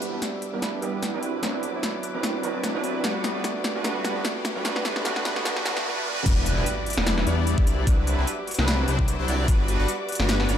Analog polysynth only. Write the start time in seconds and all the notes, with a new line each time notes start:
Already playing: G3 B3 D4 E4 B4
0.13 G3 B3 D4 E4 B4
0.53 G3 B3 D4 E4 B4
0.82 G3 B3 D4 E4 B4
1.14 F#3 C4 D4 E4 B4
1.43 F#3 C4 D4 E4 B4
1.74 F#3 C4 D4 E4 B4
2.14 F#3 C4 D4 E4 B4
2.43 F#3 C4 D4 E4 B4
2.75 F#3 C4 D4 E4 B4
3.04 G3 B3 D4 F#4 B4
3.35 G3 B3 D4 F#4 B4
3.75 G3 B3 D4 F#4 B4
3.84 G3 B3 D4 F#4 B4
4.16 G3 B3 D4 F#4 B4
4.56 G3 B3 D4 F#4 B4
4.65 G3 B3 D4 F#4 B4
4.96 G3 B3 D4 F#4 B4
5.05 G3 B3 D4 F#4 B4
5.36 G3 B3 D4 F#4 B4
5.45 G3 B3 D4 F#4 B4
5.66 G3 B3 D4 F#4 B4
5.86 G3 B3 D4 F#4 B4
6.06 G3 B3 D4 F#4 B4
6.26 G3 B3 D4 E4 B4
6.57 G3 B3 D4 E4 B4
6.97 G3 B3 D4 E4 B4
7.27 G3 B3 D4 E4 D5
7.58 G3 B3 D4 E4 D5
7.67 F#3 C4 D4 E4 D5
7.87 F#3 C4 D4 E4 B4
8.18 F#3 C4 D4 E4 B4
8.58 F#3 C4 D4 E4 B4
8.88 F#3 C4 D4 E4 C5
9.19 F#3 C4 D4 E4 C5
9.28 F#3 C4 D4 E4 D5
9.48 G3 B3 D4 F#4 B4
9.79 G3 B3 D4 F#4 B4
10.20 G3 B3 D4 F#4 B4
10.49 G3 B3 D4 F#4 D5